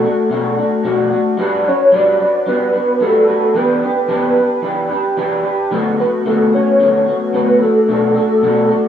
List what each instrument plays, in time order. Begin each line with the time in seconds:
Already playing: soft synth lead A4
0.03 clean electric guitar A3 D4 F#4
0.29 clean electric guitar B2 A3 D4 F#4
0.57 clean electric guitar A3 D4 F#4
0.84 clean electric guitar B2 A3 D4 F#4
1.10 clean electric guitar A3 D4 F#4
1.37 clean electric guitar G3 D4 F#4 B4
1.65 clean electric guitar D4 F#4 B4, soft synth lead C#5
1.92 clean electric guitar G3 D4 F#4 B4, soft synth lead D5
2.19 clean electric guitar D4 F#4 B4
2.46 clean electric guitar G3 D4 F#4 B4, soft synth lead B4
2.73 clean electric guitar D4 F#4 B4
3.00 clean electric guitar G3 D4 F#4 B4, soft synth lead A4
3.27 clean electric guitar D4 F#4 B4
3.54 clean electric guitar E3 D4 G4 B4, soft synth lead B4
3.82 clean electric guitar D4 G4 B4
4.08 clean electric guitar E3 D4 G4 B4, soft synth lead B4
4.36 clean electric guitar D4 G4 B4
4.62 clean electric guitar E3 D4 G4 B4
4.89 clean electric guitar D4 G4 B4
5.17 clean electric guitar E3 D4 G4 B4
5.43 clean electric guitar D4 G4 B4
5.71 clean electric guitar D3 A3 B3 F#4
5.98 clean electric guitar A3 B3 F#4, soft synth lead B4
6.26 clean electric guitar D3 A3 B3 F#4, soft synth lead A4
6.53 clean electric guitar A3 B3 F#4, soft synth lead C#5
6.79 clean electric guitar D3 A3 B3 F#4
7.06 clean electric guitar A3 B3 F#4
7.33 clean electric guitar D3 A3 B3 F#4, soft synth lead B4
7.61 clean electric guitar A3 D4 F#4, soft synth lead A4
7.88 clean electric guitar B2 A3 D4 F#4
8.14 clean electric guitar A3 D4 F#4
8.42 clean electric guitar B2 A3 D4 F#4
8.69 clean electric guitar A3 D4 F#4